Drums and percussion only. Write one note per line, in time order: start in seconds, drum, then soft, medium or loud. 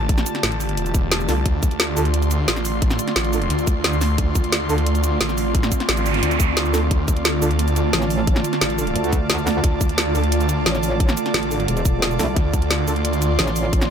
0.09 kick loud
0.09 closed hi-hat medium
0.18 snare medium
0.18 shaker soft
0.26 closed hi-hat medium
0.26 shaker medium
0.35 snare soft
0.35 closed hi-hat soft
0.43 snare loud
0.43 closed hi-hat medium
0.52 closed hi-hat soft
0.60 open hi-hat medium
0.60 shaker medium
0.69 closed hi-hat soft
0.77 closed hi-hat medium
0.86 closed hi-hat soft
0.86 shaker soft
0.94 kick loud
0.94 closed hi-hat medium
0.94 shaker medium
1.12 snare loud
1.12 closed hi-hat medium
1.20 shaker soft
1.29 snare soft
1.29 open hi-hat medium
1.29 shaker medium
1.46 kick loud
1.46 closed hi-hat medium
1.63 kick loud
1.63 closed hi-hat medium
1.63 shaker medium
1.71 closed hi-hat soft
1.80 snare loud
1.80 closed hi-hat medium
1.97 open hi-hat medium
1.97 shaker medium
2.05 closed hi-hat soft
2.14 closed hi-hat medium
2.22 closed hi-hat soft
2.22 shaker soft
2.31 closed hi-hat medium
2.31 shaker medium
2.48 snare loud
2.48 closed hi-hat medium
2.56 snare soft
2.56 shaker soft
2.65 open hi-hat medium
2.65 shaker medium
2.82 kick loud
2.82 closed hi-hat medium
2.91 snare medium
2.91 shaker soft
2.99 closed hi-hat medium
2.99 shaker medium
3.08 snare soft
3.08 closed hi-hat soft
3.16 snare loud
3.16 closed hi-hat medium
3.25 closed hi-hat soft
3.33 open hi-hat medium
3.33 shaker medium
3.42 closed hi-hat soft
3.50 closed hi-hat medium
3.59 closed hi-hat soft
3.59 shaker soft
3.67 kick loud
3.67 closed hi-hat medium
3.67 shaker medium
3.84 snare loud
3.84 closed hi-hat medium
3.93 shaker soft
4.01 snare soft
4.01 open hi-hat medium
4.01 shaker medium
4.18 kick loud
4.18 closed hi-hat loud
4.35 kick loud
4.35 closed hi-hat medium
4.35 shaker medium
4.44 closed hi-hat soft
4.52 snare loud
4.52 closed hi-hat medium
4.69 open hi-hat medium
4.69 shaker medium
4.78 closed hi-hat soft
4.87 closed hi-hat medium
4.95 closed hi-hat soft
4.95 shaker soft
5.04 closed hi-hat medium
5.04 shaker medium
5.21 snare loud
5.21 closed hi-hat medium
5.29 snare soft
5.29 shaker soft
5.38 open hi-hat medium
5.38 shaker medium
5.55 kick loud
5.55 closed hi-hat loud
5.63 snare medium
5.63 shaker soft
5.72 kick medium
5.72 closed hi-hat medium
5.72 shaker medium
5.80 snare soft
5.80 closed hi-hat soft
5.89 snare loud
5.89 closed hi-hat medium
5.97 closed hi-hat soft
5.97 shaker soft
6.06 open hi-hat medium
6.06 shaker medium
6.14 closed hi-hat soft
6.23 closed hi-hat loud
6.31 closed hi-hat soft
6.31 shaker soft
6.40 kick loud
6.40 closed hi-hat medium
6.40 shaker medium
6.57 snare loud
6.57 closed hi-hat loud
6.65 shaker soft
6.74 snare soft
6.74 open hi-hat medium
6.74 shaker medium
6.91 kick loud
6.91 closed hi-hat loud
7.08 kick loud
7.08 closed hi-hat medium
7.08 shaker medium
7.17 closed hi-hat soft
7.25 snare loud
7.25 closed hi-hat medium
7.42 open hi-hat medium
7.42 shaker medium
7.51 closed hi-hat soft
7.59 closed hi-hat loud
7.68 closed hi-hat soft
7.68 shaker soft
7.76 closed hi-hat medium
7.76 shaker medium
7.93 snare loud
7.93 closed hi-hat medium
8.02 snare soft
8.02 shaker soft
8.10 open hi-hat medium
8.10 shaker medium
8.27 kick loud
8.27 closed hi-hat loud
8.36 snare medium
8.36 shaker soft
8.44 closed hi-hat medium
8.44 shaker medium
8.53 snare soft
8.53 closed hi-hat soft
8.61 snare loud
8.61 closed hi-hat medium
8.70 closed hi-hat soft
8.79 open hi-hat medium
8.79 shaker medium
8.87 closed hi-hat soft
8.96 closed hi-hat medium
9.04 closed hi-hat soft
9.04 shaker soft
9.13 kick loud
9.13 closed hi-hat medium
9.13 shaker medium
9.30 snare loud
9.30 closed hi-hat medium
9.38 shaker soft
9.47 snare medium
9.47 open hi-hat medium
9.47 shaker medium
9.64 kick loud
9.64 closed hi-hat medium
9.81 kick loud
9.81 closed hi-hat medium
9.81 shaker medium
9.89 closed hi-hat soft
9.98 snare loud
9.98 closed hi-hat medium
10.15 open hi-hat medium
10.15 shaker medium
10.24 closed hi-hat soft
10.32 closed hi-hat medium
10.41 closed hi-hat soft
10.41 shaker soft
10.49 closed hi-hat medium
10.49 shaker medium
10.66 snare loud
10.66 closed hi-hat medium
10.75 snare soft
10.75 shaker soft
10.83 open hi-hat medium
10.83 shaker medium
11.00 kick loud
11.00 closed hi-hat medium
11.09 snare medium
11.09 shaker soft
11.17 closed hi-hat medium
11.17 shaker medium
11.26 snare soft
11.26 closed hi-hat soft
11.34 snare loud
11.34 closed hi-hat medium
11.43 closed hi-hat soft
11.51 open hi-hat medium
11.51 shaker medium
11.60 closed hi-hat soft
11.68 closed hi-hat medium
11.77 closed hi-hat soft
11.77 shaker soft
11.85 kick loud
11.85 closed hi-hat medium
11.85 shaker medium
12.02 snare loud
12.02 closed hi-hat medium
12.11 shaker soft
12.19 snare soft
12.19 open hi-hat medium
12.19 shaker medium
12.36 kick loud
12.36 closed hi-hat medium
12.54 kick loud
12.54 closed hi-hat medium
12.54 shaker medium
12.62 closed hi-hat soft
12.71 snare loud
12.71 closed hi-hat medium
12.88 open hi-hat medium
12.88 shaker medium
12.96 closed hi-hat soft
13.05 closed hi-hat medium
13.13 closed hi-hat soft
13.13 shaker soft
13.22 closed hi-hat medium
13.22 shaker medium
13.39 snare loud
13.39 closed hi-hat medium
13.47 snare soft
13.47 shaker soft
13.56 open hi-hat medium
13.56 shaker medium
13.73 kick loud
13.73 closed hi-hat medium
13.81 snare medium
13.81 shaker soft